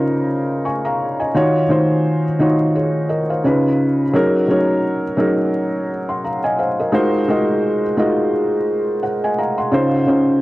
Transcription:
Already playing: C#3 C#4 D#4 F4 A#4 C5 D5 D#5
0.65 G#5 C#6
0.85 F5 A#5
1.20 D#5 G#5
1.34 D#3 D#4 F4 F#4 C#5
1.69 D#3 D#4 F4 F#4 C5
2.39 D#3 D#4 F4 F#4 C#5
2.75 G#4 C#5
3.09 A#4 D#5
3.30 C5 F5
3.44 C#3 C#4 D#4 F4 B4
4.13 F#3 C#4 D#4 G#4 A#4
4.48 F#3 C#4 D#4 G#4 C#5
5.17 F#3 C#4 D#4 G#4 A#4
6.09 F#5 C6
6.25 F5 A#5
6.44 D#5 G#5
6.59 C5 F5
6.79 A#4 D#5
6.92 G#3 D#4 F4 F#4 A#4 C5
7.28 G#3 D#4 F4 F#4 A#4 D#5
7.97 G#3 D#4 F4 F#4 A#4 D#5
9.03 C5 F#5
9.24 D#5 G#5
9.39 F5 A#5
9.58 F#5 C6
9.72 C#3 C#4 D#4 F4 C5
10.07 C#3 C#4 D#4 F4 C5

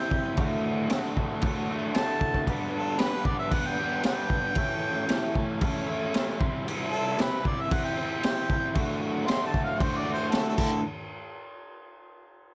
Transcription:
Already playing: C4 E4 G4 C5 G5
0.11 kick
0.35 D2 A2 D3 A3 F#4, kick, crash
0.89 D2 A2 D3 A3 F#4, snare, crash
1.15 A3 F#4, kick
1.19 D3
1.42 A2 D3 A3, kick, crash
1.46 F#4
1.69 D3 A3 F#4
1.94 A2 D3 A3 F#4 A5, snare, crash
2.21 kick
2.34 kick
2.46 G2 D3 G3 B3 D4 G4, kick, crash
2.75 A4
2.97 G2 D3 G3 B3 D4 G4 B4, snare, crash
3.24 G3 B3 D4 G4 D5, kick
3.39 E5
3.50 G3 B3 D4 G4 F#5, kick, crash
3.67 G5
3.77 G3 B3 D4 G4
4.03 G3 B3 D4 G4 G5, snare, crash
4.30 kick
4.55 A2 E3 A3 C#4 E4 A4, kick, crash
5.08 A2 E3 A3 C#4 E4 A4, snare, crash
5.35 A3 C#4 E4 A4, kick
5.60 A3 C#4 E4 A4, kick, crash
5.86 A3 C#4 E4 A4
6.14 A3 C#4 E4 A4, snare, crash
6.39 C3 G3 C4 E4 G4 C5, kick
6.66 C3 G3 C4 E4 G4 C5, crash
6.92 A4
7.17 C3 G3 C4 E4 G4 C5, snare, crash
7.22 B4
7.43 C4 E4 G4 C5, kick
7.48 D5
7.61 E5
7.69 C4 E4 G4 C5, kick, crash
7.73 F#5
7.85 G5
7.96 C4 E4 G4 C5
8.22 C4 E4 G4 G5, snare, crash
8.26 C5
8.50 kick
8.74 D2 A2 D3 A3, kick, crash
8.78 F#4
9.26 D2 A2 D3 A3 F#4 C6, snare, crash
9.46 A5
9.53 D3 A3 F#4, kick
9.64 F5
9.79 A2 D3 A3 F#4 C5, kick, crash
9.98 D5
10.04 D3 A3 F#4
10.14 C5
10.31 A2 D3 A3 F#4 A4, snare, crash
10.49 A4
10.56 D2 A2 D3 A4, kick, crash

